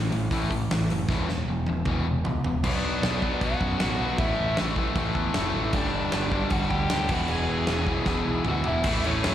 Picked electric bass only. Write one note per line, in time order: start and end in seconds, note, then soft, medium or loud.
0.00 0.12 A1 medium
0.14 0.30 A1 medium
0.31 0.49 A1 loud
0.50 0.68 A1 medium
0.70 0.88 A1 medium
0.91 1.08 F#1 medium
1.09 1.45 E1 medium
1.48 1.66 E1 medium
1.69 1.85 E1 medium
1.86 2.04 E1 loud
2.07 2.24 E1 medium
2.25 2.43 C#2 medium
2.45 2.63 E1 medium
2.64 2.78 B1 medium
2.85 2.98 B1 medium
3.04 3.31 B1 medium
3.41 3.55 B1 medium
3.61 3.75 F#2 medium
3.81 3.95 A1 medium
4.01 4.14 B1 medium
4.18 4.32 A1 medium
4.39 4.53 A1 medium
4.61 4.87 A1 medium
4.95 5.10 A1 medium
5.15 5.29 E2 loud
5.37 5.50 F#1 medium
5.55 5.69 A1 medium
5.73 5.88 G1 medium
5.95 6.08 G1 medium
6.14 6.42 G1 medium
6.51 6.65 G1 loud
6.71 6.85 D2 loud
6.92 7.06 D2 medium
7.10 7.24 E1 medium
7.31 7.44 E1 loud
7.50 7.64 E1 medium
7.68 7.96 E1 loud
8.06 8.21 E1 loud
8.28 8.42 B1 medium
8.48 8.61 D2 medium
8.68 8.81 E1 medium
8.84 8.97 A1 loud
9.06 9.18 A1 medium
9.26 9.35 F#2 medium